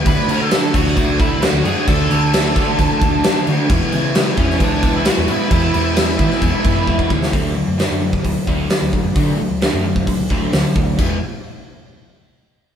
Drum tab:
CC |x-x-x-x-x-x-x-x-|x-x-x-x-x-x-x-x-|x-x-x-x-x-x-x-x-|x-x-x-x-x-x-----|
HH |----------------|----------------|----------------|----------------|
SD |----o--o----o---|----o-------o---|----o--o----o---|----o--o-------o|
BD |o-----o-o-o-----|o-----o-o-o-----|o-----o-o-o-----|o-----o-o-o-ooo-|

CC |----------------|----------------|x---------------|
HH |o---o---o---o---|o---o---o---o---|----------------|
SD |----o-------o---|----o-------o---|----------------|
BD |o------oo-o---o-|o------oo-o---o-|o---------------|